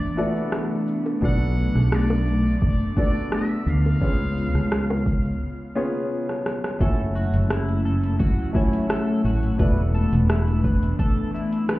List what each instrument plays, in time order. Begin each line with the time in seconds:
Already playing: analog synth pad E3 A3 B3 D4, grand piano B3 E4 F#4 A4 D5, muted trumpet D5
0.17 grand piano B3 E4 F#4 A4 D5, cabasa
0.36 cabasa
0.52 cross-stick, cabasa
0.88 cabasa
1.06 high bongo, cabasa
1.21 fretless electric bass B1, analog synth pad A3, grand piano B3 D4 F#4 A4 D5, muted trumpet F#5, kick, cabasa
1.57 cabasa
1.75 fretless electric bass B1, cross-stick, cabasa
1.92 muted trumpet D5, cross-stick, cabasa
2.10 high bongo
2.28 cabasa
2.46 cabasa
2.62 fretless electric bass F#1, muted trumpet D5, kick, cabasa
2.96 grand piano B3 D4 F#4 A4 D5, kick, cabasa
3.00 muted trumpet D5
3.16 cabasa
3.32 muted trumpet E5, cross-stick, cabasa
3.66 fretless electric bass D2, muted trumpet F5, cabasa
3.85 high bongo, cabasa
4.00 fretless electric bass C#2, analog synth pad C#3 G#3 B3 F4, grand piano B3 C#4 F4 G#4 C#5, kick, cabasa
4.37 cabasa
4.54 fretless electric bass C#2, cross-stick, cabasa
4.72 cross-stick, cabasa
4.90 high bongo
5.06 kick, cabasa
5.25 cabasa
5.75 grand piano B3 C#4 F4 G#4 C#5
6.29 cross-stick
6.46 cross-stick
6.64 cross-stick
6.79 fretless electric bass F#1, analog synth pad F#3 A3 C#4 E4, grand piano A3 E4 F#4 C#5 G#5, clean electric guitar A4, kick, closed hi-hat, cabasa
7.15 clean electric guitar F#4, cabasa
7.34 fretless electric bass F#1, closed hi-hat, cabasa
7.50 clean electric guitar E4, cross-stick, closed hi-hat, cabasa
7.69 closed hi-hat
7.85 clean electric guitar A4, cabasa
8.03 closed hi-hat, cabasa
8.19 fretless electric bass C#2, clean electric guitar F#4, kick, closed hi-hat, cabasa
8.53 grand piano A3 E4 F#4 C#5 G#5, clean electric guitar E4, kick, cabasa
8.73 closed hi-hat, cabasa
8.89 clean electric guitar A4, cross-stick, closed hi-hat, cabasa
9.24 fretless electric bass A1, clean electric guitar F#4, cabasa
9.43 closed hi-hat, cabasa
9.58 fretless electric bass E1, analog synth pad E3 B3 D4, grand piano B3 E4 F#4 A4 D5, clean electric guitar B4, kick, closed hi-hat, cabasa
9.95 clean electric guitar A4, cabasa
10.13 fretless electric bass E1, closed hi-hat, cabasa
10.30 clean electric guitar E4, cross-stick, closed hi-hat, cabasa
10.48 closed hi-hat
10.64 clean electric guitar B4, kick, cabasa
10.83 closed hi-hat, cabasa
10.99 clean electric guitar A4, kick, closed hi-hat, cabasa
11.34 clean electric guitar E4, cabasa
11.53 closed hi-hat, cabasa
11.69 clean electric guitar B4, cross-stick, closed hi-hat, cabasa